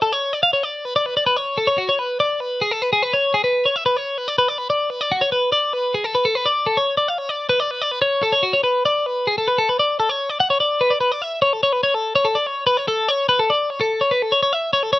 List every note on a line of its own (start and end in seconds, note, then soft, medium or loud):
0.02 0.13 A4 medium
0.13 0.33 C#5 medium
0.33 0.43 D5 medium
0.43 0.53 F5 medium
0.53 0.63 C#5 medium
0.63 0.85 D5 medium
0.85 0.95 B4 medium
0.96 1.06 D5 medium
1.06 1.16 B4 medium
1.17 1.26 D5 medium
1.26 1.37 B4 medium
1.37 1.57 C#5 medium
1.58 1.68 A4 medium
1.67 1.78 C#5 medium
1.78 1.88 F#4 medium
1.89 1.99 C#5 medium
1.99 2.20 B4 medium
2.20 2.40 D5 medium
2.40 2.61 B4 medium
2.62 2.71 G#4 medium
2.71 2.82 A4 medium
2.82 2.92 B4 medium
2.93 3.03 G#4 medium
3.03 3.13 B4 medium
3.14 3.34 C#5 medium
3.34 3.44 G#4 medium
3.44 3.65 B4 medium
3.65 3.76 C#5 medium
3.76 3.85 E5 medium
3.86 3.97 B4 medium
3.97 4.18 C#5 medium
4.18 4.28 B4 medium
4.28 4.38 D5 medium
4.38 4.48 B4 medium
4.49 4.58 D5 medium
4.58 4.69 B4 medium
4.70 4.90 D5 medium
4.90 5.01 B4 medium
5.01 5.11 D5 medium
5.12 5.22 F#4 medium
5.21 5.32 C#5 medium
5.32 5.52 B4 medium
5.52 5.73 D5 medium
5.73 5.94 B4 medium
5.94 6.04 G#4 medium
6.04 6.15 A4 medium
6.15 6.25 B4 medium
6.25 6.35 A4 medium
6.35 6.46 B4 medium
6.46 6.67 D5 medium
6.67 6.77 A4 medium
6.77 6.97 C#5 medium
6.97 7.08 D5 medium
7.08 7.18 F5 medium
7.18 7.29 C#5 medium
7.29 7.49 D5 medium
7.49 7.60 B4 medium
7.60 7.71 D5 medium
7.71 7.82 B4 medium
7.82 7.92 D5 medium
7.92 8.01 B4 medium
8.02 8.22 C#5 medium
8.23 8.33 A4 medium
8.32 8.43 C#5 medium
8.43 8.53 F#4 medium
8.53 8.63 C#5 medium
8.64 8.85 B4 medium
8.85 9.06 D5 medium
9.06 9.27 B4 medium
9.27 9.37 G#4 medium
9.38 9.48 A4 medium
9.48 9.58 B4 medium
9.58 9.68 A4 medium
9.69 9.79 B4 medium
9.79 9.99 D5 medium
10.00 10.10 A4 medium
10.10 10.30 C#5 medium
10.30 10.40 D5 medium
10.40 10.50 F#5 medium
10.50 10.60 C#5 medium
10.60 10.81 D5 medium
10.81 10.91 B4 medium
10.90 11.00 D5 medium
11.01 11.12 B4 medium
11.12 11.22 D5 medium
11.22 11.42 E5 medium
11.42 11.53 C#5 medium
11.53 11.63 A4 medium
11.63 11.73 C#5 medium
11.73 11.83 B4 medium
11.83 11.94 C#5 medium
11.94 12.15 A4 medium
12.16 12.26 C#5 medium
12.25 12.36 A4 medium
12.35 12.47 D5 medium
12.47 12.66 C#5 medium
12.67 12.77 B4 medium
12.77 12.88 C#5 medium
12.88 13.09 A4 loud
13.09 13.28 C#5 medium
13.29 13.39 B4 loud
13.39 13.50 A4 medium
13.50 13.70 D5 medium
13.70 13.80 C#5 medium
13.81 14.01 A4 medium
14.01 14.11 C#5 medium
14.11 14.22 B4 medium
14.22 14.32 A4 medium
14.32 14.41 C#5 medium
14.43 14.53 C#5 medium
14.53 14.73 E5 loud
14.73 14.83 C#5 medium
14.83 14.92 A4 medium
14.93 14.99 C#5 medium